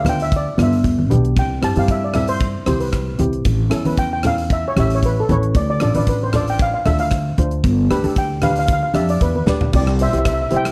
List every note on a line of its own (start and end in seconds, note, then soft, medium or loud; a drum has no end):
0.00 0.43 D2 medium
0.05 0.37 B3 medium
0.05 0.37 D4 medium
0.05 0.38 F4 medium
0.05 cross-stick medium
0.05 closed hi-hat medium
0.05 high conga medium
0.05 low conga medium
0.09 0.22 G5 medium
0.20 0.33 E5 loud
0.20 closed hi-hat medium
0.32 kick loud
0.32 closed hi-hat medium
0.36 0.61 D5 medium
0.58 1.10 G1 medium
0.58 0.90 B3 medium
0.58 0.90 D4 medium
0.58 0.90 F4 medium
0.58 cross-stick medium
0.58 closed hi-hat medium
0.58 high conga medium
0.58 low conga medium
0.63 0.85 E5 medium
0.73 closed hi-hat medium
0.84 kick medium
0.84 closed hi-hat medium
0.84 low conga medium
0.99 high conga medium
1.10 1.32 B1 medium
1.10 1.36 B3 medium
1.10 1.37 D4 medium
1.10 1.37 G4 medium
1.10 closed hi-hat medium
1.10 high conga medium
1.10 low conga medium
1.25 closed hi-hat medium
1.37 1.59 C2 loud
1.37 1.65 G5 medium
1.37 kick loud
1.37 closed hi-hat medium
1.62 1.74 G2 medium
1.62 1.71 C4 medium
1.62 1.71 E4 medium
1.62 1.71 G4 medium
1.62 1.78 A5 loud
1.62 cross-stick medium
1.62 closed hi-hat medium
1.76 2.53 G2 medium
1.76 2.00 C4 medium
1.76 2.00 E4 medium
1.76 2.00 G4 medium
1.76 1.91 F5 medium
1.76 closed hi-hat medium
1.76 high conga medium
1.88 2.04 E5 medium
1.88 kick medium
1.88 closed hi-hat medium
2.04 2.16 D5 medium
2.14 2.47 C4 medium
2.14 2.47 E4 medium
2.14 2.47 A4 medium
2.14 2.29 E5 medium
2.14 cross-stick medium
2.14 closed hi-hat medium
2.14 low conga medium
2.28 2.65 C5 medium
2.28 closed hi-hat medium
2.40 kick loud
2.40 closed hi-hat medium
2.66 3.12 C2 medium
2.66 2.99 C4 medium
2.66 2.99 E4 medium
2.66 2.99 G4 medium
2.66 2.73 C5 medium
2.66 cross-stick medium
2.66 closed hi-hat medium
2.66 high conga medium
2.66 low conga medium
2.80 3.55 B4 medium
2.80 closed hi-hat medium
2.93 kick medium
2.93 cross-stick medium
2.93 closed hi-hat medium
3.19 3.42 C2 medium
3.19 3.45 C4 medium
3.19 3.46 E4 medium
3.19 3.46 G4 medium
3.19 closed hi-hat medium
3.19 high conga medium
3.19 low conga medium
3.33 closed hi-hat medium
3.45 3.68 A1 loud
3.45 kick loud
3.45 closed hi-hat medium
3.70 3.84 E2 medium
3.70 3.79 C#4 medium
3.70 3.80 E4 medium
3.70 3.80 A4 medium
3.70 cross-stick loud
3.70 closed hi-hat medium
3.85 4.63 E2 medium
3.85 4.09 C#4 medium
3.85 4.09 E4 medium
3.85 4.10 B4 medium
3.85 closed hi-hat medium
3.85 high conga medium
3.97 4.12 G5 loud
3.97 kick medium
3.97 closed hi-hat medium
4.13 4.25 G5 medium
4.23 4.56 C#4 medium
4.23 4.56 E4 medium
4.23 4.57 A4 medium
4.23 4.53 F5 loud
4.23 cross-stick medium
4.23 closed hi-hat medium
4.23 low conga medium
4.38 closed hi-hat medium
4.50 4.66 E5 medium
4.50 kick loud
4.50 closed hi-hat medium
4.68 4.79 C#5 medium
4.76 5.21 A1 loud
4.76 5.08 C#4 medium
4.76 5.08 E4 medium
4.76 5.09 G4 medium
4.76 4.91 E5 loud
4.76 cross-stick medium
4.76 closed hi-hat medium
4.76 high conga medium
4.76 low conga medium
4.90 closed hi-hat medium
4.95 5.00 C#5 medium
5.03 5.19 B4 medium
5.03 kick medium
5.03 closed hi-hat medium
5.20 5.31 A4 medium
5.29 5.51 A1 loud
5.29 5.55 C#4 medium
5.29 5.56 E4 medium
5.29 5.56 B4 medium
5.29 5.57 C#5 medium
5.29 closed hi-hat medium
5.29 high conga medium
5.29 low conga medium
5.43 closed hi-hat medium
5.54 5.77 D2 loud
5.54 5.69 D5 medium
5.54 kick loud
5.54 closed hi-hat medium
5.70 5.81 D5 loud
5.80 5.94 A1 loud
5.80 5.90 D4 medium
5.80 5.90 F4 medium
5.80 5.90 A4 medium
5.80 5.96 D5 medium
5.80 cross-stick medium
5.80 closed hi-hat medium
5.94 6.72 A1 medium
5.94 6.18 D4 medium
5.94 6.19 F4 medium
5.94 6.19 B4 medium
5.94 6.09 D5 medium
5.94 closed hi-hat medium
5.94 high conga medium
6.07 6.23 B4 medium
6.07 kick medium
6.07 closed hi-hat medium
6.23 6.35 C5 medium
6.33 6.65 D4 medium
6.33 6.65 F4 medium
6.33 6.66 A4 medium
6.33 6.41 D5 medium
6.33 cross-stick medium
6.33 closed hi-hat medium
6.33 low conga medium
6.47 6.61 G5 medium
6.47 closed hi-hat medium
6.59 6.73 F5 loud
6.59 kick loud
6.59 closed hi-hat medium
6.74 6.87 F5 medium
6.86 7.30 D2 medium
6.86 7.18 D4 medium
6.86 7.18 F4 medium
6.86 7.18 A4 medium
6.86 7.00 E5 loud
6.86 cross-stick medium
6.86 closed hi-hat medium
6.86 high conga medium
6.86 low conga medium
6.99 7.74 F5 medium
6.99 closed hi-hat medium
7.11 kick medium
7.11 cross-stick medium
7.11 closed hi-hat medium
7.38 7.60 D2 loud
7.38 7.65 D4 medium
7.38 7.65 F4 medium
7.38 7.65 C5 medium
7.38 closed hi-hat medium
7.38 high conga medium
7.38 low conga medium
7.51 closed hi-hat medium
7.64 7.86 G1 loud
7.64 kick loud
7.64 closed hi-hat medium
7.90 8.02 D2 medium
7.90 7.99 D4 medium
7.90 7.99 G4 medium
7.90 7.99 B4 loud
7.90 cross-stick medium
7.90 closed hi-hat medium
8.04 8.81 D2 medium
8.04 8.28 D4 medium
8.04 8.28 G4 medium
8.04 8.28 A4 medium
8.04 closed hi-hat medium
8.04 high conga medium
8.16 8.45 G5 medium
8.16 kick loud
8.16 closed hi-hat medium
8.42 8.74 D4 medium
8.42 8.75 G4 medium
8.42 8.75 B4 medium
8.42 8.49 F5 loud
8.42 cross-stick medium
8.42 closed hi-hat medium
8.42 high conga medium
8.42 low conga medium
8.51 8.58 F5 medium
8.56 8.65 F5 medium
8.56 closed hi-hat medium
8.66 8.72 F5 medium
8.66 kick loud
8.66 closed hi-hat medium
8.73 8.81 F5 medium
8.83 8.90 F5 medium
8.94 9.18 F2 medium
8.94 9.26 D4 medium
8.94 9.26 G4 medium
8.94 9.27 D5 medium
8.94 9.08 E5 medium
8.94 cross-stick medium
8.94 closed hi-hat medium
8.94 high conga medium
9.09 9.22 D5 medium
9.09 closed hi-hat medium
9.21 9.45 E2 medium
9.21 9.35 B4 medium
9.21 kick medium
9.21 closed hi-hat medium
9.35 9.48 B4 medium
9.35 high conga medium
9.46 9.71 D2 medium
9.46 9.73 D4 medium
9.46 9.74 G4 medium
9.46 9.74 B4 medium
9.46 9.73 B4 medium
9.46 9.75 D5 medium
9.46 snare medium
9.46 low conga medium
9.61 floor tom medium
9.61 low conga medium
9.73 10.07 C2 loud
9.73 9.99 G4 medium
9.73 9.99 D5 loud
9.73 kick loud
9.73 crash loud
9.87 cross-stick medium
9.99 10.08 C5 medium
9.99 10.09 E5 loud
9.99 closed hi-hat medium
10.10 10.46 C2 medium
10.10 10.37 E4 medium
10.10 10.37 G4 medium
10.10 10.17 E5 medium
10.10 closed hi-hat medium
10.14 10.37 C5 medium
10.19 10.24 E5 medium
10.25 10.32 E5 medium
10.25 kick loud
10.25 cross-stick loud
10.25 closed hi-hat medium
10.33 10.40 E5 medium
10.42 10.47 E5 medium
10.51 10.72 C2 medium
10.51 10.72 E4 medium
10.51 10.72 G4 medium
10.51 10.72 C5 medium
10.51 10.72 E5 medium
10.51 closed hi-hat medium
10.57 10.72 G5 loud
10.65 cross-stick medium
10.65 closed hi-hat medium